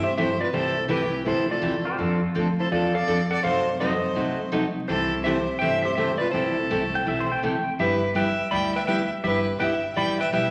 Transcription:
Already playing: upright bass G2
0.03 electric slide guitar G4 E5, fiddle C5
0.17 steel-string acoustic guitar C3 E3 A3 E4 G4, electric slide guitar G4 E5, fiddle C5
0.40 electric slide guitar F4 D5, fiddle B4
0.53 upright bass C2, steel-string acoustic guitar C3 E3 A3 E4 G4, electric slide guitar E4 C5, fiddle A4
0.88 upright bass C2, steel-string acoustic guitar C3 E3 A3 E4 G4, electric slide guitar E4 B4, fiddle G4
1.25 upright bass D2, steel-string acoustic guitar C3 E3 A3 E4 G4, electric slide guitar E4 C5, fiddle A4
1.50 electric slide guitar F4 D5, fiddle A4
1.62 upright bass E2, steel-string acoustic guitar C3 E3 A3 E4 G4
1.85 pedal steel guitar G4 C5
1.98 upright bass F2, steel-string acoustic guitar F3 C4 D4 A4, pedal steel guitar F4 A4
2.24 pedal steel guitar F4
2.35 upright bass D2, steel-string acoustic guitar F3 C4 D4 A4
2.60 electric slide guitar E4 C5, fiddle A4
2.72 upright bass E2, steel-string acoustic guitar F3 C4 D4 A4, electric slide guitar F4 D5, fiddle A4
2.94 electric slide guitar A4 F5, fiddle D5
3.08 upright bass F2, steel-string acoustic guitar F3 C4 D4 A4
3.31 electric slide guitar A4 F#5, fiddle D5
3.44 upright bass F#2, steel-string acoustic guitar C3 F#3 A3 D#4 F#4, electric slide guitar A4 F5, fiddle C5
3.80 steel-string acoustic guitar C3 F#3 A3 D#4 F#4, electric slide guitar A4 D#5, fiddle C5
4.15 steel-string acoustic guitar C3 F#3 A3 D#4 F#4, upright bass C3
4.52 steel-string acoustic guitar C3 F#3 A3 D#4 F#4
4.88 upright bass C2, steel-string acoustic guitar C3 E3 A3 E4 G4, electric slide guitar E4 C5, fiddle A4
5.24 steel-string acoustic guitar C3 E3 A3 E4 G4, electric slide guitar G4 E5, fiddle C5
5.59 upright bass G1, steel-string acoustic guitar C3 E3 A3 E4 G4, electric slide guitar C5 G5, fiddle E5
5.82 electric slide guitar G4 E5, fiddle C5
5.95 steel-string acoustic guitar C3 E3 A3 E4 G4, electric slide guitar G4 E5, fiddle C5
6.18 electric slide guitar F4 D5, fiddle B4
6.32 upright bass C2, steel-string acoustic guitar C3 E3 A3 E4 G4, electric slide guitar E4 C5, fiddle A4
6.70 upright bass C2, steel-string acoustic guitar C3 E3 A3 E4 G4
6.95 pedal steel guitar G5
7.06 upright bass B1, steel-string acoustic guitar C3 E3 A3 E4 G4, pedal steel guitar E5
7.20 pedal steel guitar C5
7.32 pedal steel guitar G5
7.43 upright bass A1, steel-string acoustic guitar C3 E3 A3 E4 G4, pedal steel guitar G5
7.79 upright bass G1, steel-string acoustic guitar G3 B3 E4 G4, electric slide guitar G4 E5, fiddle B4
8.15 steel-string acoustic guitar G3 B3 E4 G4, electric slide guitar B4 G5, fiddle E5
8.51 upright bass D2, steel-string acoustic guitar G3 B3 E4 G4, electric slide guitar D5 B5, fiddle G5
8.75 electric slide guitar B4 G5, fiddle E5
8.87 steel-string acoustic guitar G3 B3 E4 G4, electric slide guitar B4 G5, fiddle E5
9.23 upright bass G1, steel-string acoustic guitar G3 B3 E4 G4, electric slide guitar G4 E5, fiddle B4
9.59 upright bass G1, steel-string acoustic guitar G3 B3 E4 G4, electric slide guitar B4 G5, fiddle E5
9.96 upright bass A1, steel-string acoustic guitar G3 B3 E4 G4, electric slide guitar D5 B5, fiddle G5
10.20 electric slide guitar B4 G5, fiddle E5
10.32 upright bass B1, steel-string acoustic guitar G3 B3 E4 G4, electric slide guitar B4 G5, fiddle E5

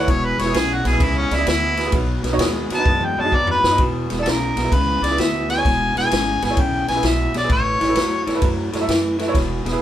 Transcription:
Already playing: harmonica F#5
0.00 upright piano A4 C#5
0.07 upright bass E1, clean electric guitar E2 B2, harmonica C#5, kick, ride
0.25 harmonica B4
0.37 upright bass E1, clean electric guitar E2 B2, upright piano G#4 B4, harmonica C#5, snare, ride
0.45 upright piano E4 G#4 B4
0.54 upright bass B1, clean electric guitar E2 C#3, harmonica G#4, snare, ride
0.73 harmonica F#4
0.83 upright bass B1, clean electric guitar E2 B2, upright piano G#4 B4, snare, ride
0.87 upright piano E4, harmonica G#4
0.92 upright piano G#4 B4
1.00 upright bass C#2, clean electric guitar E2 C#3, harmonica E4, kick, ride
1.17 harmonica C#4
1.31 upright bass C#2, clean electric guitar E2 C#3, harmonica E4, upright piano G#4 D5, snare, ride
1.37 upright piano E4 G#4 D5
1.46 upright bass D2, clean electric guitar E2 B2, harmonica E4, snare, ride
1.77 clean electric guitar E2 B2, upright piano G#4 B4, snare, ride
1.85 upright piano E4 G#4 B4
1.92 upright bass B1, clean electric guitar B2 F#3, kick, ride
2.23 upright bass B1, clean electric guitar B2 F#3, upright piano F#4 B4, snare, ride
2.32 upright piano D#4 F#4 C#5
2.37 upright bass D#2, clean electric guitar B2 G#3, snare, ride
2.70 upright bass D#2, clean electric guitar B2 F#3, upright piano F#4 B4, snare, ride
2.75 upright piano D#4, harmonica A5
2.79 upright piano F#4 B4
2.86 upright bass F#2, clean electric guitar B2 G#3, kick
3.01 high tom
3.05 harmonica G5
3.17 upright bass F#2, clean electric guitar B2 G#3, upright piano F#4 C#5, harmonica A5
3.24 upright piano D#4 F#4 G#4
3.32 upright bass F#2, clean electric guitar B2 F#3, harmonica D5, kick
3.47 harmonica B4, floor tom
3.63 upright bass F#2, clean electric guitar B2 F#3, upright piano F#4 B4, snare
3.71 upright piano D#4 F#4 B4
3.78 upright bass E1, clean electric guitar E2 B2, kick, ride
4.09 upright bass E1, clean electric guitar E2 B2, upright piano G#4 B4, snare, ride
4.18 upright piano E4 G#4 D5
4.22 upright bass B1, clean electric guitar E2, harmonica A4 A#4, ride
4.26 clean electric guitar C#3, snare
4.55 upright bass B1, clean electric guitar E2 B2, upright piano G#4 B4, snare, ride
4.64 upright piano E4 G#4 B4
4.72 upright bass C#2, clean electric guitar E2 C#3, harmonica B4, kick, ride
5.02 upright bass C#2, clean electric guitar E2 C#3, upright piano G#4 D5, harmonica D5, snare, ride
5.11 upright piano E4 G#4 B4
5.18 upright bass D2, clean electric guitar E2 B2, harmonica E5, snare, ride
5.48 clean electric guitar E2 B2, upright piano G#4 B4, harmonica G#5, snare, ride
5.57 upright piano E4 G#4 C#5
5.65 upright bass E1, clean electric guitar E2 B2, kick, snare, ride
5.95 upright bass E1, clean electric guitar E2 B2, upright piano G#4 B4, harmonica G#5, snare, ride
6.02 upright piano E4 G#4 B4
6.11 upright bass G#1, clean electric guitar E2 C#3, snare, ride
6.41 upright bass G#1, clean electric guitar E2 B2, upright piano G#4 B4, harmonica G#5, snare, ride
6.50 upright piano E4 G#4 C#5
6.57 upright bass B1, clean electric guitar E2 C#3, harmonica G5, kick, ride
6.87 upright bass B1, clean electric guitar E2 C#3, upright piano G#4 B4, harmonica G#5, snare, ride
6.95 upright piano E4 G#4 B4
7.03 upright bass B1, clean electric guitar E2 B2, harmonica E5, snare, ride
7.33 upright bass B1, clean electric guitar E2 B2, upright piano G#4 C#5, snare, ride
7.38 harmonica D5
7.44 upright piano E4 G#4 B4
7.49 upright bass A1, clean electric guitar A2 E3, harmonica C#5, kick, ride
7.81 upright bass A1, clean electric guitar A2 E3, upright piano A4 C#5, snare, ride
7.89 upright piano E4 A4 B4
7.95 upright bass E2, clean electric guitar A2 F#3, snare, ride
8.27 upright bass E2, clean electric guitar A2 E3, upright piano A4 C#5, snare, ride
8.35 upright piano E4 A4 B4
8.42 upright bass F#2, clean electric guitar A2 F#3, kick, ride
8.72 upright bass F#2, clean electric guitar A2 F#3, upright piano A4 C#5, snare, ride
8.80 upright piano E4 A4 E5
8.88 upright bass F#2, clean electric guitar A2 E3, snare, ride
9.19 clean electric guitar A2 E3, upright piano A4 E5, snare, ride
9.28 upright piano E4 A4 C#5
9.34 upright bass E1, clean electric guitar E2 B2, kick, snare, ride
9.65 upright bass E1, clean electric guitar E2 B2, upright piano G#4 B4, snare, ride
9.72 upright piano E4 G#4 B4

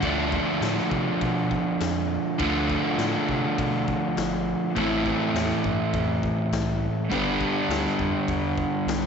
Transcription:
0.00 analog synth bass D2, overdriven electric guitar D3 F3 A3, kick, crash
0.05 overdriven electric guitar D4
0.32 kick
0.61 analog synth bass A2, snare, crash
0.78 snare
0.91 analog synth bass C3, kick
1.21 analog synth bass B2, kick, crash
1.51 kick
1.80 analog synth bass F2, snare, crash
2.38 analog synth bass D2, overdriven electric guitar D3 F3 A3, kick, crash
2.43 overdriven electric guitar D4
2.70 kick
2.98 analog synth bass A2, snare, crash
3.28 analog synth bass C3, kick
3.58 analog synth bass B2, kick, crash
3.88 kick
4.17 analog synth bass G1, snare, crash
4.76 analog synth bass A1, overdriven electric guitar A2 E3 A3 C4, kick, crash
4.80 overdriven electric guitar E4
5.06 kick
5.34 analog synth bass E2, snare, crash
5.50 snare
5.64 analog synth bass G2, kick
5.93 analog synth bass F2, kick, crash
6.23 kick
6.51 analog synth bass C2, snare, crash
7.10 analog synth bass G1, overdriven electric guitar G2 D3 G3 B3, kick, crash
7.15 overdriven electric guitar D4
7.41 kick
7.69 analog synth bass D2, snare, crash
7.86 snare
7.99 analog synth bass F2, kick
8.28 analog synth bass E2, kick, crash
8.58 kick
8.86 analog synth bass B1, snare, crash

